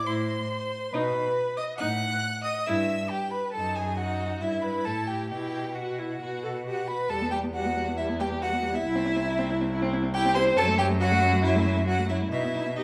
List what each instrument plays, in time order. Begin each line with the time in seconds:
0.06 cello A2, viola E4, violin C5 C6
0.93 cello B2, viola D#4, violin B4 B5
1.57 violin D#5 D#6
1.78 cello A2, viola D#4, violin F#5 F#6
2.44 violin D#5 D#6
2.66 cello G2, viola E4, violin E5 E6
3.09 violin G4 G5
3.31 violin B4 B5
3.52 cello F#2, viola D#4, violin A4 A5
3.76 violin G#4 G#5
3.97 viola D#4, violin F#4 F#5
4.40 cello G2, violin E4 E5, viola E4
4.62 violin B4 B5
4.85 cello A2, violin A4 A5
5.07 violin G4 G5
5.29 cello B2, viola E4, violin G4 G5
5.75 violin F#4 F#5, viola F#4
5.98 viola E4
6.21 cello B2, viola F#4
6.44 viola A4
6.66 violin F#4 F#5, viola G4
6.88 viola F#4, violin B4 B5
7.09 cello E2, viola G3, violin A4 A5
7.21 viola B3
7.31 viola G3, violin G4 G5
7.44 viola B3
7.54 viola G3, violin F#4 F#5
7.66 viola B3
7.77 viola G3
7.88 viola B3
7.97 viola G3, violin E4 E5
8.09 viola B3
8.20 viola G3, violin G4 G5
8.31 viola B3
8.41 viola G3, violin F#4 F#5
8.53 viola B3
8.63 viola G3
8.73 viola B3, violin E4 E5
8.85 cello C2, viola E4
8.95 viola C4
9.06 viola E4
9.16 viola C4
9.27 viola E4
9.39 viola C4
9.50 viola E4
9.61 viola C4
9.71 viola E4
9.82 viola C4
9.93 viola E4
10.03 viola C4
10.14 viola E4, violin G4 G5
10.26 viola C4
10.35 viola E4, violin C5 C6
10.47 viola C4
10.57 cello F#2, viola F#3, violin A4 A5
10.68 viola A3
10.78 viola F#3, violin G4 G5
10.90 viola A3
11.00 viola F#3, violin F#4 F#5
11.12 viola A3
11.22 viola F#3
11.33 viola A3
11.44 viola F#3, violin E4 E5
11.55 viola A3
11.66 viola F#3
11.77 viola A3
11.87 viola F#3, violin F#4 F#5
11.99 viola A3
12.09 viola F#3, violin E4 E5
12.21 viola A3
12.32 cello B2, viola D#4, violin E4 E5
12.44 viola B3
12.55 viola D#4
12.66 viola B3
12.76 violin D#4 D#5, viola G4